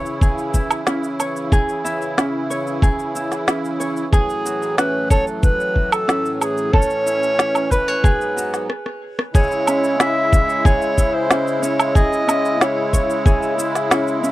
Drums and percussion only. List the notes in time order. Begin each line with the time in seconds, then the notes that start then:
0.06 cabasa
0.21 kick, cabasa
0.38 cabasa
0.54 kick, cabasa
0.71 cabasa, low woodblock
0.87 snare, cabasa
1.04 cabasa
1.20 cabasa, low woodblock
1.36 cabasa
1.52 kick, cabasa
1.69 cabasa
1.86 cabasa
2.02 cabasa
2.18 snare, cabasa
2.51 cabasa
2.67 cabasa
2.82 kick, cabasa
2.99 cabasa
3.15 cabasa
3.32 snare, cabasa
3.48 snare, cabasa
3.65 cabasa
3.81 cabasa
3.97 cabasa
4.13 kick, cabasa
4.30 cabasa
4.46 cabasa
4.62 cabasa
4.78 snare, cabasa
5.10 kick, cabasa
5.27 cabasa
5.43 kick, cabasa
5.60 cabasa
5.76 kick
5.92 cabasa, low woodblock
6.09 snare, cabasa
6.25 cabasa
6.41 cabasa, low woodblock
6.58 cabasa
6.73 kick
6.82 cabasa
6.90 cabasa
7.07 cabasa
7.23 cabasa
7.39 snare, cabasa
7.55 cabasa, low woodblock
7.71 kick, cabasa
7.88 cabasa
8.04 kick, cabasa
8.21 cabasa
8.38 cabasa
8.54 snare, cabasa
8.70 cross-stick
8.86 cross-stick
9.19 cross-stick
9.35 kick, cabasa
9.44 cabasa
9.47 cabasa
9.52 cabasa
9.67 cabasa, low woodblock
9.84 cabasa
10.00 snare, cabasa
10.33 kick, cabasa
10.50 cabasa
10.65 kick, cabasa
10.82 cabasa
10.98 kick, cabasa
11.30 snare, cabasa
11.48 cabasa
11.63 cabasa
11.79 cabasa, low woodblock
11.95 kick, cabasa
12.13 cabasa
12.29 cabasa, low woodblock
12.45 cabasa
12.61 snare, cabasa
12.93 kick, cabasa
13.10 cabasa
13.26 kick, cabasa
13.43 cabasa
13.59 cabasa
13.75 snare, cabasa
13.91 snare, cabasa
14.08 cabasa
14.24 cabasa